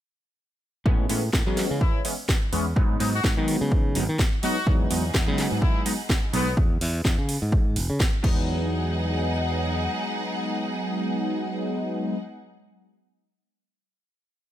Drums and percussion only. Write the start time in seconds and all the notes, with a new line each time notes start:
0.86 kick
1.09 open hi-hat
1.33 kick, snare
1.57 snare, open hi-hat
1.81 kick
2.05 open hi-hat
2.29 kick, snare
2.53 open hi-hat
2.76 kick
3.00 open hi-hat
3.24 kick, snare
3.48 open hi-hat
3.72 kick
3.95 open hi-hat
4.19 kick, snare
4.43 open hi-hat
4.67 kick
4.91 open hi-hat
5.14 kick, snare
5.38 snare, open hi-hat
5.62 kick
5.86 open hi-hat
6.09 kick, snare
6.34 open hi-hat
6.57 kick
6.81 open hi-hat
7.05 kick, snare
7.29 open hi-hat
7.52 kick
7.76 open hi-hat
8.00 kick, snare
8.24 kick, crash